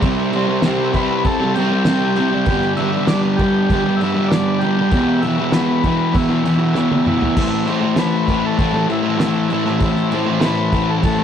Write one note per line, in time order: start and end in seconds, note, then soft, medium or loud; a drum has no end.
0.00 0.30 C3 loud
0.00 0.33 G3 loud
0.00 2.43 C4 loud
0.00 2.41 E4 medium
0.00 2.42 G4 medium
0.00 kick loud
0.00 crash medium
0.05 0.34 C4 loud
0.31 0.61 C3 medium
0.31 0.51 G3 medium
0.31 0.91 C5 loud
0.31 crash medium
0.36 0.46 C4 loud
0.47 0.64 G3 medium
0.47 0.65 C4 medium
0.62 0.92 C3 loud
0.62 0.95 G3 loud
0.62 0.95 C4 loud
0.62 snare loud
0.62 crash medium
0.93 1.23 C3 medium
0.93 1.25 G3 medium
0.93 1.26 C4 medium
0.93 1.26 B4 loud
0.93 kick medium
0.93 crash medium
1.24 1.55 C3 medium
1.24 1.44 G3 medium
1.24 1.39 C4 medium
1.24 1.53 A4 loud
1.24 kick loud
1.24 crash medium
1.40 1.57 G3 medium
1.40 1.58 C4 medium
1.55 1.83 C3 medium
1.55 1.73 G3 medium
1.55 1.69 C4 loud
1.55 2.15 G4 loud
1.55 crash medium
1.70 1.86 G3 medium
1.70 1.87 C4 medium
1.85 2.15 C3 loud
1.85 2.17 G3 loud
1.85 2.19 C4 loud
1.85 snare loud
1.85 crash medium
2.16 2.45 C3 medium
2.16 2.34 G3 medium
2.16 2.29 C4 medium
2.16 2.73 G4 loud
2.16 crash medium
2.31 2.50 G3 medium
2.31 2.45 C4 medium
2.44 2.76 G2 medium
2.44 4.86 B2 medium
2.44 4.87 D4 medium
2.44 4.87 G4 medium
2.44 4.87 B4 medium
2.44 kick loud
2.44 crash medium
2.48 2.78 D3 loud
2.48 2.81 G3 loud
2.61 snare soft
2.77 3.08 G2 medium
2.77 2.96 D3 medium
2.77 3.06 E5 loud
2.77 crash medium
2.81 2.92 G3 medium
2.93 3.12 G3 medium
2.97 3.10 D3 medium
3.07 3.38 G2 medium
3.07 3.40 D3 loud
3.07 3.22 D5 loud
3.07 snare loud
3.07 crash medium
3.12 3.42 G3 loud
3.37 3.69 G2 medium
3.37 4.01 G4 loud
3.37 kick loud
3.37 crash medium
3.41 3.71 D3 medium
3.41 3.73 G3 medium
3.70 3.99 G2 medium
3.70 3.87 D3 medium
3.70 kick loud
3.70 crash medium
3.74 3.84 G3 medium
3.85 4.01 D3 medium
3.85 4.03 G3 medium
3.96 4.29 G2 medium
3.96 4.30 E5 loud
4.01 4.18 D3 medium
4.01 4.14 G3 medium
4.01 crash medium
4.15 4.31 D3 medium
4.15 4.33 G3 medium
4.28 4.61 G2 medium
4.28 4.61 D5 loud
4.28 snare loud
4.32 4.63 D3 loud
4.32 4.65 G3 loud
4.32 crash medium
4.59 4.90 G2 medium
4.59 5.23 G4 loud
4.59 crash medium
4.64 4.80 D3 medium
4.64 4.76 G3 medium
4.77 4.92 D3 medium
4.77 4.90 G3 medium
4.91 5.22 E2 loud
4.91 5.23 B2 loud
4.91 7.32 E4 medium
4.91 7.33 G4 medium
4.91 7.33 B4 medium
4.91 kick loud
4.91 crash medium
4.96 5.25 E3 medium
5.21 5.51 E2 medium
5.21 5.40 B2 medium
5.21 5.53 E5 loud
5.21 crash medium
5.26 5.36 E3 medium
5.38 5.54 B2 medium
5.38 5.55 E3 medium
5.52 5.82 E2 loud
5.52 5.84 B2 loud
5.52 6.16 B4 medium
5.52 snare loud
5.52 crash medium
5.56 5.86 E3 loud
5.84 6.11 E2 medium
5.84 6.14 B2 medium
5.84 6.15 E3 medium
5.84 kick medium
5.84 crash medium
6.13 6.43 E2 medium
6.13 6.31 B2 medium
6.13 6.28 E3 medium
6.13 7.02 E4 medium
6.13 kick loud
6.13 crash medium
6.29 6.45 B2 medium
6.29 6.47 E3 medium
6.44 6.73 E2 medium
6.44 6.61 B2 medium
6.44 6.57 E3 medium
6.44 crash medium
6.58 6.77 E3 medium
6.62 6.75 B2 medium
6.74 7.04 E2 medium
6.74 7.06 B2 medium
6.74 7.07 E3 loud
6.74 snare medium
6.92 high tom medium
7.05 7.34 E2 medium
7.05 7.22 B2 medium
7.05 7.18 E3 medium
7.05 7.70 E4 loud
7.05 mid tom medium
7.19 7.35 B2 medium
7.19 7.34 E3 medium
7.19 floor tom medium
7.35 7.66 A2 medium
7.35 7.68 E3 loud
7.35 7.69 A3 loud
7.35 11.24 C4 medium
7.35 11.24 E4 medium
7.35 11.24 A4 medium
7.35 kick loud
7.35 crash loud
7.35 crash medium
7.52 snare soft
7.66 7.95 A2 medium
7.66 7.84 E3 medium
7.66 7.81 A3 medium
7.66 7.99 C5 medium
7.66 crash medium
7.81 7.98 E3 medium
7.81 7.99 A3 medium
7.96 8.26 A2 loud
7.96 8.28 E3 loud
7.96 8.30 A3 loud
7.96 8.45 B4 loud
7.96 snare loud
7.96 crash medium
8.26 8.56 A2 medium
8.26 8.58 E3 medium
8.26 8.59 A3 medium
8.26 kick loud
8.26 crash medium
8.46 8.59 A4 medium
8.58 8.86 A2 medium
8.58 8.76 E3 medium
8.58 8.72 A3 medium
8.58 8.88 A4 medium
8.58 kick loud
8.58 crash medium
8.73 8.88 E3 medium
8.73 8.90 A3 medium
8.87 9.17 A2 medium
8.87 9.06 E3 medium
8.87 9.02 A3 medium
8.87 crash medium
8.92 9.19 E4 medium
9.03 9.20 A3 medium
9.07 9.19 E3 medium
9.18 9.48 A2 medium
9.18 9.50 E3 loud
9.18 9.52 A3 loud
9.18 snare loud
9.18 crash medium
9.22 9.52 E4 loud
9.49 9.78 A2 medium
9.49 9.67 E3 medium
9.49 9.64 A3 medium
9.49 10.15 E4 medium
9.49 crash medium
9.65 9.80 E3 medium
9.65 9.82 A3 medium
9.65 snare soft
9.79 10.09 A2 loud
9.79 10.11 E3 loud
9.79 10.13 A3 loud
9.79 kick loud
9.79 crash medium
9.96 snare soft
10.10 10.39 A2 medium
10.10 10.29 E3 medium
10.10 10.44 C5 medium
10.10 crash medium
10.15 10.24 A3 loud
10.26 10.43 A3 medium
10.30 10.41 E3 medium
10.40 10.70 A2 loud
10.40 10.72 E3 loud
10.40 10.73 A3 loud
10.40 snare loud
10.40 crash medium
10.45 10.91 B4 loud
10.71 11.01 A2 medium
10.71 11.03 E3 medium
10.71 11.05 A3 medium
10.71 kick loud
10.71 crash medium
10.90 10.96 A4 medium
11.02 11.24 A2 medium
11.02 11.20 E3 medium
11.02 11.17 A3 medium
11.02 11.24 A4 loud
11.02 kick loud
11.02 crash medium
11.18 11.24 A3 medium